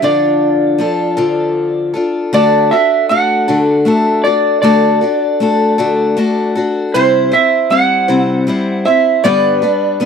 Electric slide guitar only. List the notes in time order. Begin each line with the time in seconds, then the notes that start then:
0.04 D5
2.34 D5
2.71 E5
3.09 F#5
3.91 E5
4.24 D5
4.62 D5
6.94 C5
7.33 E5
7.71 F#5
8.86 E5
9.24 D5